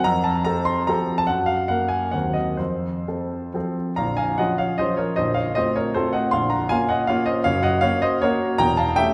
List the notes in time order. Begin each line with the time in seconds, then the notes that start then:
0.04 F2 A#5
0.24 A5
0.45 C4 A4 A#5
0.65 C6
0.87 F3 C4 A4 A#5
1.18 A5
1.27 F#2 F#5
1.46 F5
1.68 A#3 A#4 F#5
1.89 G#5
2.11 D#2 F#3 C4 A#4 F#5
2.33 D#5
2.57 F2 C5
3.08 C4 A4
3.54 F3 C4 A4
3.96 A#0 A#1 F5 A#5
4.17 F5 G#5
4.38 F3 C#4 F4 D#5 F#5
4.58 C#5 F5
4.78 F3 C#4 F4 C5 D#5
4.97 A#4 C#5
5.16 A#0 A#1 C5 D#5
5.34 C#5 F5
5.55 A3 C4 F4 C5 D#5
5.76 A#4 C#5
5.94 A3 C4 F4 A4 C5
6.13 D#5 F#5
6.31 A#0 A#1 F5 C6
6.50 F#5 A#5
6.69 A#3 C#4 F4 F5 G#5
6.89 D#5 F#5
7.07 A#3 C#4 F4 C#5 F5
7.26 C5 D#5
7.44 F#1 F#2 C#5 F5
7.63 D#5 F#5
7.81 A#3 C#4 F#4 C#5 F5
8.02 C5 D#5
8.22 A#3 C#4 F#4 A#4 C#5
8.58 E1 E2 G5 A#5
8.77 F5 A5
8.96 A3 C#4 G4 E5 G5